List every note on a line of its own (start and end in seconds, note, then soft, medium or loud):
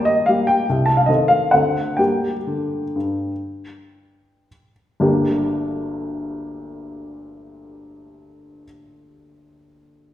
0.00 0.24 G3 soft
0.00 0.24 A#3 soft
0.00 0.24 G4 soft
0.05 0.27 D#5 medium
0.26 0.65 G3 soft
0.26 0.65 A#3 soft
0.26 0.65 G4 soft
0.26 0.48 F5 medium
0.47 0.87 G5 medium
0.70 1.08 C2 soft
0.86 0.97 A5 medium
0.97 1.08 F5 soft
1.06 1.49 D#3 soft
1.06 1.49 C4 soft
1.06 1.49 A4 soft
1.06 1.29 D#5 soft
1.28 1.52 F5 medium
1.51 1.97 D2 soft
1.51 1.95 D3 soft
1.51 1.95 C4 soft
1.51 1.95 A4 soft
1.51 1.98 F#5 medium
1.97 2.32 G3 soft
1.97 2.36 A#3 soft
1.97 2.37 G4 soft
1.97 4.73 G5 soft
2.47 2.81 D3 soft
2.96 3.30 G2 soft
5.00 8.63 G1 soft
5.00 8.63 D2 soft
5.00 8.64 G3 soft
5.00 8.64 A#3 soft
5.00 8.64 D4 soft
5.00 8.65 G4 soft